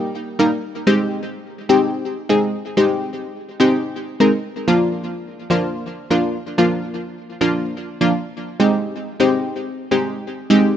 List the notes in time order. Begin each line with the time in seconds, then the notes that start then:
Already playing: G3 A#3 D#4 G4
0.39 G3 A#3 D#4 A#4
0.87 G#3 C4 D#4 G4
1.69 G#3 C4 D#4 G4
2.29 G#3 C4 D#4 G#4
2.77 G#3 C4 D#4 G4
3.60 G#3 C4 D#4 G4
4.20 G#3 C4 D#4 A#4
4.68 F3 A#3 D4 F4
5.50 F3 A#3 D4 F4
6.10 F3 A#3 D4 F4
6.58 F3 A#3 D4 F4
7.41 F3 A#3 D4 F4
8.01 F3 A#3 D4 F4
8.60 G#3 C4 D#4 G4
9.20 G#3 C4 D#4 G4
9.91 G#3 C4 D#4 G4
10.50 G#3 C4 D#4 G4